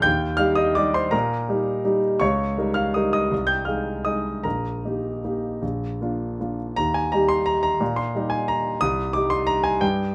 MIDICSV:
0, 0, Header, 1, 2, 480
1, 0, Start_track
1, 0, Key_signature, -3, "major"
1, 0, Tempo, 361446
1, 77, Time_signature, 3, 2, 24, 8
1, 4881, Tempo, 387097
1, 8721, Tempo, 343249
1, 11601, Tempo, 327690
1, 13531, End_track
2, 0, Start_track
2, 0, Title_t, "Grand piano"
2, 0, Program_c, 0, 0
2, 0, Control_c, 0, 64, 127
2, 28, Note_on_c, 0, 91, 98
2, 46, Note_on_c, 0, 79, 77
2, 58, Note_on_c, 0, 39, 69
2, 104, Control_c, 0, 64, 0
2, 310, Control_c, 0, 64, 127
2, 489, Note_on_c, 0, 89, 95
2, 493, Note_off_c, 0, 79, 0
2, 510, Note_on_c, 0, 77, 65
2, 515, Note_on_c, 0, 55, 46
2, 518, Note_off_c, 0, 91, 0
2, 519, Note_off_c, 0, 39, 0
2, 519, Note_on_c, 0, 63, 50
2, 522, Note_on_c, 0, 67, 55
2, 737, Note_on_c, 0, 87, 92
2, 749, Note_off_c, 0, 77, 0
2, 756, Note_off_c, 0, 89, 0
2, 759, Note_on_c, 0, 75, 69
2, 965, Note_off_c, 0, 55, 0
2, 967, Note_off_c, 0, 63, 0
2, 968, Note_off_c, 0, 67, 0
2, 998, Note_off_c, 0, 75, 0
2, 999, Note_on_c, 0, 86, 92
2, 1005, Note_off_c, 0, 87, 0
2, 1018, Note_on_c, 0, 74, 73
2, 1024, Note_on_c, 0, 55, 50
2, 1031, Note_on_c, 0, 63, 50
2, 1032, Note_on_c, 0, 67, 57
2, 1248, Note_off_c, 0, 74, 0
2, 1253, Note_on_c, 0, 84, 87
2, 1256, Note_off_c, 0, 86, 0
2, 1259, Note_on_c, 0, 72, 65
2, 1453, Note_off_c, 0, 55, 0
2, 1457, Note_off_c, 0, 63, 0
2, 1458, Note_off_c, 0, 67, 0
2, 1473, Note_on_c, 0, 82, 86
2, 1481, Note_off_c, 0, 72, 0
2, 1486, Note_on_c, 0, 70, 63
2, 1491, Note_on_c, 0, 46, 68
2, 1495, Note_off_c, 0, 84, 0
2, 1528, Control_c, 0, 64, 0
2, 1738, Control_c, 0, 64, 127
2, 1954, Note_off_c, 0, 46, 0
2, 1976, Note_on_c, 0, 55, 48
2, 1981, Note_on_c, 0, 63, 44
2, 1985, Note_on_c, 0, 67, 51
2, 2413, Note_off_c, 0, 55, 0
2, 2415, Note_off_c, 0, 63, 0
2, 2417, Note_off_c, 0, 67, 0
2, 2450, Note_on_c, 0, 55, 49
2, 2456, Note_on_c, 0, 63, 48
2, 2460, Note_on_c, 0, 67, 49
2, 2641, Note_off_c, 0, 70, 0
2, 2688, Note_off_c, 0, 82, 0
2, 2885, Note_off_c, 0, 55, 0
2, 2888, Note_off_c, 0, 63, 0
2, 2891, Note_off_c, 0, 67, 0
2, 2915, Note_on_c, 0, 85, 90
2, 2935, Note_on_c, 0, 37, 65
2, 2937, Note_on_c, 0, 73, 73
2, 2967, Control_c, 0, 64, 0
2, 3205, Control_c, 0, 64, 127
2, 3393, Note_off_c, 0, 37, 0
2, 3420, Note_on_c, 0, 55, 44
2, 3429, Note_on_c, 0, 63, 44
2, 3432, Note_on_c, 0, 70, 48
2, 3605, Note_off_c, 0, 73, 0
2, 3642, Note_on_c, 0, 89, 83
2, 3644, Note_off_c, 0, 85, 0
2, 3658, Note_on_c, 0, 77, 65
2, 3867, Note_off_c, 0, 55, 0
2, 3872, Note_off_c, 0, 63, 0
2, 3873, Note_off_c, 0, 70, 0
2, 3894, Note_off_c, 0, 77, 0
2, 3904, Note_off_c, 0, 89, 0
2, 3907, Note_on_c, 0, 87, 75
2, 3921, Note_on_c, 0, 75, 56
2, 3927, Note_on_c, 0, 55, 45
2, 3928, Note_on_c, 0, 63, 45
2, 3936, Note_on_c, 0, 70, 50
2, 4137, Note_off_c, 0, 87, 0
2, 4149, Note_off_c, 0, 75, 0
2, 4157, Note_on_c, 0, 87, 85
2, 4169, Note_on_c, 0, 75, 59
2, 4361, Note_off_c, 0, 55, 0
2, 4362, Note_off_c, 0, 63, 0
2, 4366, Note_off_c, 0, 70, 0
2, 4400, Note_on_c, 0, 36, 57
2, 4425, Control_c, 0, 64, 0
2, 4604, Note_on_c, 0, 91, 87
2, 4607, Note_off_c, 0, 75, 0
2, 4623, Note_on_c, 0, 79, 59
2, 4629, Control_c, 0, 64, 127
2, 4634, Note_off_c, 0, 87, 0
2, 4848, Note_on_c, 0, 89, 64
2, 4856, Note_off_c, 0, 79, 0
2, 4864, Note_off_c, 0, 91, 0
2, 4865, Note_off_c, 0, 36, 0
2, 4866, Note_on_c, 0, 77, 52
2, 4871, Note_on_c, 0, 56, 39
2, 4871, Note_on_c, 0, 63, 39
2, 4879, Note_on_c, 0, 68, 43
2, 5303, Note_off_c, 0, 56, 0
2, 5303, Note_off_c, 0, 63, 0
2, 5307, Note_off_c, 0, 68, 0
2, 5315, Note_off_c, 0, 77, 0
2, 5340, Note_off_c, 0, 89, 0
2, 5340, Note_on_c, 0, 87, 73
2, 5351, Note_on_c, 0, 75, 56
2, 5355, Note_on_c, 0, 56, 38
2, 5360, Note_on_c, 0, 63, 40
2, 5368, Note_on_c, 0, 68, 43
2, 5789, Note_off_c, 0, 56, 0
2, 5791, Note_off_c, 0, 63, 0
2, 5796, Note_off_c, 0, 68, 0
2, 5801, Note_off_c, 0, 75, 0
2, 5823, Note_on_c, 0, 82, 66
2, 5830, Note_off_c, 0, 87, 0
2, 5837, Note_on_c, 0, 70, 51
2, 5841, Note_on_c, 0, 34, 51
2, 5865, Control_c, 0, 64, 0
2, 6066, Control_c, 0, 64, 127
2, 6306, Note_off_c, 0, 34, 0
2, 6339, Note_on_c, 0, 58, 34
2, 6339, Note_on_c, 0, 63, 37
2, 6346, Note_on_c, 0, 67, 39
2, 6776, Note_off_c, 0, 58, 0
2, 6776, Note_off_c, 0, 63, 0
2, 6780, Note_off_c, 0, 67, 0
2, 6826, Note_on_c, 0, 63, 36
2, 6829, Note_on_c, 0, 58, 38
2, 6832, Note_on_c, 0, 67, 40
2, 7252, Note_off_c, 0, 63, 0
2, 7254, Note_off_c, 0, 58, 0
2, 7256, Note_off_c, 0, 67, 0
2, 7291, Note_on_c, 0, 34, 50
2, 7318, Control_c, 0, 64, 0
2, 7539, Control_c, 0, 64, 127
2, 7747, Note_off_c, 0, 34, 0
2, 7781, Note_on_c, 0, 58, 36
2, 7789, Note_on_c, 0, 62, 33
2, 7791, Note_on_c, 0, 65, 40
2, 8212, Note_off_c, 0, 58, 0
2, 8217, Note_off_c, 0, 62, 0
2, 8218, Note_off_c, 0, 65, 0
2, 8263, Note_on_c, 0, 58, 36
2, 8266, Note_on_c, 0, 62, 36
2, 8271, Note_on_c, 0, 65, 40
2, 8445, Note_off_c, 0, 70, 0
2, 8488, Note_off_c, 0, 82, 0
2, 8681, Note_off_c, 0, 58, 0
2, 8683, Note_off_c, 0, 62, 0
2, 8685, Note_off_c, 0, 65, 0
2, 8711, Note_on_c, 0, 82, 95
2, 8728, Note_on_c, 0, 39, 62
2, 8751, Control_c, 0, 64, 0
2, 8959, Note_off_c, 0, 82, 0
2, 8961, Note_on_c, 0, 80, 81
2, 8963, Control_c, 0, 64, 127
2, 9200, Note_off_c, 0, 39, 0
2, 9206, Note_on_c, 0, 82, 84
2, 9209, Note_off_c, 0, 80, 0
2, 9226, Note_on_c, 0, 55, 47
2, 9231, Note_on_c, 0, 63, 43
2, 9237, Note_on_c, 0, 67, 52
2, 9439, Note_on_c, 0, 84, 93
2, 9450, Note_off_c, 0, 82, 0
2, 9678, Note_on_c, 0, 82, 86
2, 9686, Note_off_c, 0, 84, 0
2, 9896, Note_off_c, 0, 82, 0
2, 9917, Note_on_c, 0, 82, 89
2, 10123, Note_off_c, 0, 55, 0
2, 10125, Note_off_c, 0, 63, 0
2, 10128, Note_off_c, 0, 67, 0
2, 10166, Note_on_c, 0, 46, 68
2, 10193, Control_c, 0, 64, 0
2, 10388, Note_on_c, 0, 84, 83
2, 10397, Note_off_c, 0, 82, 0
2, 10420, Control_c, 0, 64, 127
2, 10627, Note_off_c, 0, 46, 0
2, 10649, Note_on_c, 0, 55, 46
2, 10659, Note_on_c, 0, 63, 48
2, 10661, Note_on_c, 0, 67, 49
2, 10853, Note_on_c, 0, 80, 84
2, 10877, Note_off_c, 0, 84, 0
2, 11111, Note_on_c, 0, 82, 83
2, 11112, Note_off_c, 0, 80, 0
2, 11546, Note_off_c, 0, 55, 0
2, 11551, Note_off_c, 0, 63, 0
2, 11552, Note_off_c, 0, 67, 0
2, 11566, Note_on_c, 0, 87, 105
2, 11586, Note_on_c, 0, 36, 68
2, 11590, Note_off_c, 0, 82, 0
2, 11623, Control_c, 0, 64, 0
2, 11808, Control_c, 0, 64, 127
2, 12043, Note_on_c, 0, 86, 91
2, 12054, Note_off_c, 0, 36, 0
2, 12058, Note_off_c, 0, 87, 0
2, 12066, Note_on_c, 0, 55, 47
2, 12074, Note_on_c, 0, 67, 49
2, 12076, Note_on_c, 0, 63, 45
2, 12288, Note_on_c, 0, 84, 94
2, 12303, Note_off_c, 0, 86, 0
2, 12530, Note_on_c, 0, 82, 95
2, 12551, Note_off_c, 0, 84, 0
2, 12778, Note_on_c, 0, 80, 94
2, 12791, Note_off_c, 0, 82, 0
2, 12979, Note_off_c, 0, 55, 0
2, 12983, Note_off_c, 0, 67, 0
2, 12984, Note_off_c, 0, 63, 0
2, 13027, Note_off_c, 0, 80, 0
2, 13032, Note_on_c, 0, 79, 91
2, 13040, Note_on_c, 0, 43, 71
2, 13070, Control_c, 0, 64, 0
2, 13318, Control_c, 0, 64, 127
2, 13505, Note_off_c, 0, 43, 0
2, 13531, Note_off_c, 0, 79, 0
2, 13531, End_track
0, 0, End_of_file